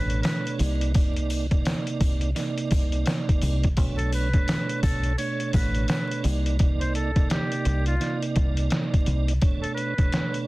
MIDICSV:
0, 0, Header, 1, 5, 480
1, 0, Start_track
1, 0, Tempo, 705882
1, 646, Time_signature, 4, 2, 24, 8
1, 7120, End_track
2, 0, Start_track
2, 0, Title_t, "Muted trumpet"
2, 0, Program_c, 0, 59
2, 0, Note_on_c, 0, 71, 73
2, 142, Note_off_c, 0, 71, 0
2, 149, Note_on_c, 0, 71, 78
2, 373, Note_off_c, 0, 71, 0
2, 2701, Note_on_c, 0, 69, 74
2, 2790, Note_off_c, 0, 69, 0
2, 2817, Note_on_c, 0, 71, 81
2, 3264, Note_off_c, 0, 71, 0
2, 3281, Note_on_c, 0, 69, 78
2, 3499, Note_off_c, 0, 69, 0
2, 3522, Note_on_c, 0, 73, 82
2, 3740, Note_off_c, 0, 73, 0
2, 3765, Note_on_c, 0, 71, 76
2, 3982, Note_off_c, 0, 71, 0
2, 4005, Note_on_c, 0, 71, 78
2, 4222, Note_off_c, 0, 71, 0
2, 4626, Note_on_c, 0, 72, 72
2, 4713, Note_off_c, 0, 72, 0
2, 4725, Note_on_c, 0, 69, 72
2, 4942, Note_off_c, 0, 69, 0
2, 4970, Note_on_c, 0, 67, 78
2, 5333, Note_off_c, 0, 67, 0
2, 5350, Note_on_c, 0, 65, 82
2, 5568, Note_off_c, 0, 65, 0
2, 6540, Note_on_c, 0, 69, 76
2, 6622, Note_off_c, 0, 69, 0
2, 6626, Note_on_c, 0, 71, 83
2, 7089, Note_off_c, 0, 71, 0
2, 7120, End_track
3, 0, Start_track
3, 0, Title_t, "Tonewheel organ"
3, 0, Program_c, 1, 16
3, 0, Note_on_c, 1, 47, 92
3, 0, Note_on_c, 1, 57, 84
3, 0, Note_on_c, 1, 62, 82
3, 0, Note_on_c, 1, 73, 99
3, 395, Note_on_c, 1, 48, 99
3, 398, Note_on_c, 1, 58, 89
3, 401, Note_on_c, 1, 63, 85
3, 403, Note_off_c, 1, 47, 0
3, 403, Note_on_c, 1, 74, 97
3, 404, Note_off_c, 1, 57, 0
3, 405, Note_off_c, 1, 62, 0
3, 407, Note_off_c, 1, 73, 0
3, 626, Note_off_c, 1, 48, 0
3, 627, Note_off_c, 1, 58, 0
3, 629, Note_off_c, 1, 63, 0
3, 630, Note_off_c, 1, 74, 0
3, 639, Note_on_c, 1, 48, 98
3, 642, Note_on_c, 1, 58, 87
3, 644, Note_on_c, 1, 63, 91
3, 647, Note_on_c, 1, 74, 98
3, 995, Note_off_c, 1, 48, 0
3, 997, Note_off_c, 1, 58, 0
3, 998, Note_off_c, 1, 63, 0
3, 999, Note_off_c, 1, 74, 0
3, 1024, Note_on_c, 1, 48, 88
3, 1026, Note_on_c, 1, 58, 81
3, 1029, Note_on_c, 1, 63, 78
3, 1032, Note_on_c, 1, 74, 98
3, 1564, Note_off_c, 1, 48, 0
3, 1565, Note_off_c, 1, 58, 0
3, 1567, Note_off_c, 1, 63, 0
3, 1568, Note_off_c, 1, 74, 0
3, 1596, Note_on_c, 1, 48, 89
3, 1598, Note_on_c, 1, 58, 85
3, 1601, Note_on_c, 1, 63, 77
3, 1604, Note_on_c, 1, 74, 101
3, 2502, Note_off_c, 1, 48, 0
3, 2504, Note_off_c, 1, 58, 0
3, 2505, Note_off_c, 1, 63, 0
3, 2506, Note_off_c, 1, 74, 0
3, 2560, Note_on_c, 1, 47, 90
3, 2562, Note_on_c, 1, 57, 79
3, 2565, Note_on_c, 1, 62, 85
3, 2568, Note_on_c, 1, 73, 97
3, 2916, Note_off_c, 1, 47, 0
3, 2917, Note_off_c, 1, 57, 0
3, 2918, Note_off_c, 1, 62, 0
3, 2920, Note_off_c, 1, 73, 0
3, 2943, Note_on_c, 1, 47, 93
3, 2946, Note_on_c, 1, 57, 78
3, 2949, Note_on_c, 1, 62, 85
3, 2951, Note_on_c, 1, 73, 104
3, 3484, Note_off_c, 1, 47, 0
3, 3485, Note_off_c, 1, 57, 0
3, 3487, Note_off_c, 1, 62, 0
3, 3488, Note_off_c, 1, 73, 0
3, 3520, Note_on_c, 1, 47, 89
3, 3522, Note_on_c, 1, 57, 82
3, 3525, Note_on_c, 1, 62, 80
3, 3528, Note_on_c, 1, 73, 101
3, 4236, Note_on_c, 1, 48, 96
3, 4238, Note_on_c, 1, 58, 87
3, 4241, Note_on_c, 1, 63, 86
3, 4243, Note_off_c, 1, 47, 0
3, 4244, Note_off_c, 1, 57, 0
3, 4244, Note_on_c, 1, 74, 96
3, 4245, Note_off_c, 1, 62, 0
3, 4247, Note_off_c, 1, 73, 0
3, 4466, Note_off_c, 1, 48, 0
3, 4468, Note_off_c, 1, 58, 0
3, 4469, Note_off_c, 1, 63, 0
3, 4470, Note_off_c, 1, 74, 0
3, 4479, Note_on_c, 1, 48, 101
3, 4482, Note_on_c, 1, 58, 84
3, 4484, Note_on_c, 1, 63, 91
3, 4487, Note_on_c, 1, 74, 96
3, 4835, Note_off_c, 1, 48, 0
3, 4837, Note_off_c, 1, 58, 0
3, 4838, Note_off_c, 1, 63, 0
3, 4839, Note_off_c, 1, 74, 0
3, 4863, Note_on_c, 1, 48, 86
3, 4866, Note_on_c, 1, 58, 79
3, 4868, Note_on_c, 1, 63, 82
3, 4871, Note_on_c, 1, 74, 102
3, 5404, Note_off_c, 1, 48, 0
3, 5405, Note_off_c, 1, 58, 0
3, 5406, Note_off_c, 1, 63, 0
3, 5408, Note_off_c, 1, 74, 0
3, 5435, Note_on_c, 1, 48, 84
3, 5437, Note_on_c, 1, 58, 83
3, 5441, Note_on_c, 1, 63, 76
3, 5443, Note_on_c, 1, 74, 100
3, 6342, Note_off_c, 1, 48, 0
3, 6343, Note_off_c, 1, 58, 0
3, 6345, Note_off_c, 1, 63, 0
3, 6346, Note_off_c, 1, 74, 0
3, 6399, Note_on_c, 1, 47, 92
3, 6402, Note_on_c, 1, 57, 83
3, 6404, Note_on_c, 1, 62, 87
3, 6407, Note_on_c, 1, 73, 95
3, 6755, Note_off_c, 1, 47, 0
3, 6757, Note_off_c, 1, 57, 0
3, 6758, Note_off_c, 1, 62, 0
3, 6759, Note_off_c, 1, 73, 0
3, 6782, Note_on_c, 1, 47, 94
3, 6785, Note_on_c, 1, 57, 80
3, 6787, Note_on_c, 1, 62, 86
3, 6790, Note_on_c, 1, 73, 106
3, 7120, Note_off_c, 1, 47, 0
3, 7120, Note_off_c, 1, 57, 0
3, 7120, Note_off_c, 1, 62, 0
3, 7120, Note_off_c, 1, 73, 0
3, 7120, End_track
4, 0, Start_track
4, 0, Title_t, "Fingered electric bass"
4, 0, Program_c, 2, 33
4, 0, Note_on_c, 2, 33, 94
4, 139, Note_off_c, 2, 33, 0
4, 409, Note_on_c, 2, 36, 97
4, 1044, Note_off_c, 2, 36, 0
4, 1366, Note_on_c, 2, 36, 94
4, 1578, Note_off_c, 2, 36, 0
4, 1848, Note_on_c, 2, 36, 93
4, 2059, Note_off_c, 2, 36, 0
4, 2329, Note_on_c, 2, 36, 94
4, 2540, Note_off_c, 2, 36, 0
4, 2568, Note_on_c, 2, 35, 109
4, 2991, Note_off_c, 2, 35, 0
4, 3286, Note_on_c, 2, 35, 93
4, 3498, Note_off_c, 2, 35, 0
4, 3768, Note_on_c, 2, 33, 96
4, 3980, Note_off_c, 2, 33, 0
4, 4249, Note_on_c, 2, 36, 98
4, 4884, Note_off_c, 2, 36, 0
4, 5208, Note_on_c, 2, 36, 94
4, 5419, Note_off_c, 2, 36, 0
4, 5689, Note_on_c, 2, 36, 92
4, 5900, Note_off_c, 2, 36, 0
4, 6169, Note_on_c, 2, 36, 94
4, 6380, Note_off_c, 2, 36, 0
4, 7120, End_track
5, 0, Start_track
5, 0, Title_t, "Drums"
5, 67, Note_on_c, 9, 42, 56
5, 135, Note_off_c, 9, 42, 0
5, 159, Note_on_c, 9, 42, 101
5, 166, Note_on_c, 9, 83, 51
5, 169, Note_on_c, 9, 38, 112
5, 227, Note_off_c, 9, 42, 0
5, 234, Note_off_c, 9, 83, 0
5, 237, Note_off_c, 9, 38, 0
5, 318, Note_on_c, 9, 42, 54
5, 386, Note_off_c, 9, 42, 0
5, 404, Note_on_c, 9, 42, 84
5, 407, Note_on_c, 9, 83, 72
5, 472, Note_off_c, 9, 42, 0
5, 475, Note_off_c, 9, 83, 0
5, 553, Note_on_c, 9, 42, 61
5, 621, Note_off_c, 9, 42, 0
5, 642, Note_on_c, 9, 42, 106
5, 646, Note_on_c, 9, 36, 113
5, 647, Note_on_c, 9, 83, 51
5, 710, Note_off_c, 9, 42, 0
5, 714, Note_off_c, 9, 36, 0
5, 715, Note_off_c, 9, 83, 0
5, 792, Note_on_c, 9, 42, 48
5, 860, Note_off_c, 9, 42, 0
5, 883, Note_on_c, 9, 83, 75
5, 886, Note_on_c, 9, 42, 62
5, 951, Note_off_c, 9, 83, 0
5, 954, Note_off_c, 9, 42, 0
5, 1028, Note_on_c, 9, 42, 53
5, 1029, Note_on_c, 9, 36, 97
5, 1096, Note_off_c, 9, 42, 0
5, 1097, Note_off_c, 9, 36, 0
5, 1125, Note_on_c, 9, 42, 101
5, 1129, Note_on_c, 9, 83, 48
5, 1133, Note_on_c, 9, 38, 120
5, 1193, Note_off_c, 9, 42, 0
5, 1197, Note_off_c, 9, 83, 0
5, 1201, Note_off_c, 9, 38, 0
5, 1271, Note_on_c, 9, 42, 54
5, 1339, Note_off_c, 9, 42, 0
5, 1364, Note_on_c, 9, 42, 84
5, 1365, Note_on_c, 9, 36, 100
5, 1367, Note_on_c, 9, 83, 77
5, 1432, Note_off_c, 9, 42, 0
5, 1433, Note_off_c, 9, 36, 0
5, 1435, Note_off_c, 9, 83, 0
5, 1503, Note_on_c, 9, 42, 46
5, 1571, Note_off_c, 9, 42, 0
5, 1604, Note_on_c, 9, 83, 50
5, 1605, Note_on_c, 9, 42, 89
5, 1610, Note_on_c, 9, 38, 35
5, 1672, Note_off_c, 9, 83, 0
5, 1673, Note_off_c, 9, 42, 0
5, 1678, Note_off_c, 9, 38, 0
5, 1752, Note_on_c, 9, 42, 54
5, 1820, Note_off_c, 9, 42, 0
5, 1840, Note_on_c, 9, 42, 68
5, 1846, Note_on_c, 9, 36, 100
5, 1847, Note_on_c, 9, 83, 79
5, 1908, Note_off_c, 9, 42, 0
5, 1914, Note_off_c, 9, 36, 0
5, 1915, Note_off_c, 9, 83, 0
5, 1987, Note_on_c, 9, 42, 57
5, 2055, Note_off_c, 9, 42, 0
5, 2078, Note_on_c, 9, 42, 97
5, 2085, Note_on_c, 9, 83, 48
5, 2089, Note_on_c, 9, 38, 110
5, 2146, Note_off_c, 9, 42, 0
5, 2153, Note_off_c, 9, 83, 0
5, 2157, Note_off_c, 9, 38, 0
5, 2237, Note_on_c, 9, 36, 89
5, 2238, Note_on_c, 9, 42, 55
5, 2305, Note_off_c, 9, 36, 0
5, 2306, Note_off_c, 9, 42, 0
5, 2323, Note_on_c, 9, 42, 81
5, 2327, Note_on_c, 9, 83, 72
5, 2391, Note_off_c, 9, 42, 0
5, 2395, Note_off_c, 9, 83, 0
5, 2472, Note_on_c, 9, 42, 58
5, 2478, Note_on_c, 9, 36, 89
5, 2540, Note_off_c, 9, 42, 0
5, 2546, Note_off_c, 9, 36, 0
5, 2562, Note_on_c, 9, 42, 103
5, 2566, Note_on_c, 9, 36, 110
5, 2567, Note_on_c, 9, 83, 54
5, 2630, Note_off_c, 9, 42, 0
5, 2634, Note_off_c, 9, 36, 0
5, 2635, Note_off_c, 9, 83, 0
5, 2711, Note_on_c, 9, 42, 49
5, 2779, Note_off_c, 9, 42, 0
5, 2804, Note_on_c, 9, 83, 73
5, 2805, Note_on_c, 9, 42, 61
5, 2872, Note_off_c, 9, 83, 0
5, 2873, Note_off_c, 9, 42, 0
5, 2947, Note_on_c, 9, 42, 53
5, 2949, Note_on_c, 9, 36, 96
5, 3015, Note_off_c, 9, 42, 0
5, 3017, Note_off_c, 9, 36, 0
5, 3045, Note_on_c, 9, 42, 99
5, 3049, Note_on_c, 9, 83, 47
5, 3053, Note_on_c, 9, 38, 119
5, 3113, Note_off_c, 9, 42, 0
5, 3117, Note_off_c, 9, 83, 0
5, 3121, Note_off_c, 9, 38, 0
5, 3192, Note_on_c, 9, 42, 57
5, 3260, Note_off_c, 9, 42, 0
5, 3284, Note_on_c, 9, 42, 80
5, 3285, Note_on_c, 9, 36, 101
5, 3286, Note_on_c, 9, 83, 79
5, 3352, Note_off_c, 9, 42, 0
5, 3353, Note_off_c, 9, 36, 0
5, 3354, Note_off_c, 9, 83, 0
5, 3424, Note_on_c, 9, 42, 49
5, 3492, Note_off_c, 9, 42, 0
5, 3524, Note_on_c, 9, 83, 50
5, 3526, Note_on_c, 9, 42, 87
5, 3592, Note_off_c, 9, 83, 0
5, 3594, Note_off_c, 9, 42, 0
5, 3672, Note_on_c, 9, 42, 54
5, 3740, Note_off_c, 9, 42, 0
5, 3762, Note_on_c, 9, 42, 71
5, 3767, Note_on_c, 9, 36, 97
5, 3767, Note_on_c, 9, 83, 75
5, 3830, Note_off_c, 9, 42, 0
5, 3835, Note_off_c, 9, 36, 0
5, 3835, Note_off_c, 9, 83, 0
5, 3907, Note_on_c, 9, 42, 58
5, 3975, Note_off_c, 9, 42, 0
5, 3998, Note_on_c, 9, 42, 100
5, 4007, Note_on_c, 9, 83, 50
5, 4009, Note_on_c, 9, 38, 111
5, 4066, Note_off_c, 9, 42, 0
5, 4075, Note_off_c, 9, 83, 0
5, 4077, Note_off_c, 9, 38, 0
5, 4158, Note_on_c, 9, 42, 55
5, 4226, Note_off_c, 9, 42, 0
5, 4243, Note_on_c, 9, 42, 81
5, 4247, Note_on_c, 9, 83, 71
5, 4311, Note_off_c, 9, 42, 0
5, 4315, Note_off_c, 9, 83, 0
5, 4393, Note_on_c, 9, 42, 58
5, 4461, Note_off_c, 9, 42, 0
5, 4482, Note_on_c, 9, 42, 104
5, 4487, Note_on_c, 9, 36, 107
5, 4550, Note_off_c, 9, 42, 0
5, 4555, Note_off_c, 9, 36, 0
5, 4632, Note_on_c, 9, 42, 48
5, 4700, Note_off_c, 9, 42, 0
5, 4726, Note_on_c, 9, 42, 61
5, 4794, Note_off_c, 9, 42, 0
5, 4868, Note_on_c, 9, 42, 54
5, 4869, Note_on_c, 9, 36, 101
5, 4936, Note_off_c, 9, 42, 0
5, 4937, Note_off_c, 9, 36, 0
5, 4964, Note_on_c, 9, 42, 98
5, 4972, Note_on_c, 9, 38, 114
5, 5032, Note_off_c, 9, 42, 0
5, 5040, Note_off_c, 9, 38, 0
5, 5112, Note_on_c, 9, 42, 56
5, 5180, Note_off_c, 9, 42, 0
5, 5204, Note_on_c, 9, 42, 81
5, 5272, Note_off_c, 9, 42, 0
5, 5344, Note_on_c, 9, 42, 46
5, 5412, Note_off_c, 9, 42, 0
5, 5446, Note_on_c, 9, 42, 89
5, 5451, Note_on_c, 9, 38, 35
5, 5514, Note_off_c, 9, 42, 0
5, 5519, Note_off_c, 9, 38, 0
5, 5593, Note_on_c, 9, 42, 53
5, 5661, Note_off_c, 9, 42, 0
5, 5682, Note_on_c, 9, 42, 69
5, 5687, Note_on_c, 9, 36, 100
5, 5750, Note_off_c, 9, 42, 0
5, 5755, Note_off_c, 9, 36, 0
5, 5828, Note_on_c, 9, 42, 58
5, 5896, Note_off_c, 9, 42, 0
5, 5919, Note_on_c, 9, 42, 102
5, 5930, Note_on_c, 9, 38, 108
5, 5987, Note_off_c, 9, 42, 0
5, 5998, Note_off_c, 9, 38, 0
5, 6077, Note_on_c, 9, 36, 87
5, 6078, Note_on_c, 9, 42, 52
5, 6145, Note_off_c, 9, 36, 0
5, 6146, Note_off_c, 9, 42, 0
5, 6163, Note_on_c, 9, 42, 84
5, 6231, Note_off_c, 9, 42, 0
5, 6313, Note_on_c, 9, 42, 59
5, 6381, Note_off_c, 9, 42, 0
5, 6403, Note_on_c, 9, 42, 102
5, 6407, Note_on_c, 9, 36, 116
5, 6471, Note_off_c, 9, 42, 0
5, 6475, Note_off_c, 9, 36, 0
5, 6553, Note_on_c, 9, 42, 49
5, 6621, Note_off_c, 9, 42, 0
5, 6647, Note_on_c, 9, 42, 60
5, 6715, Note_off_c, 9, 42, 0
5, 6788, Note_on_c, 9, 42, 54
5, 6789, Note_on_c, 9, 36, 97
5, 6856, Note_off_c, 9, 42, 0
5, 6857, Note_off_c, 9, 36, 0
5, 6885, Note_on_c, 9, 42, 96
5, 6892, Note_on_c, 9, 38, 116
5, 6953, Note_off_c, 9, 42, 0
5, 6960, Note_off_c, 9, 38, 0
5, 7032, Note_on_c, 9, 42, 57
5, 7100, Note_off_c, 9, 42, 0
5, 7120, End_track
0, 0, End_of_file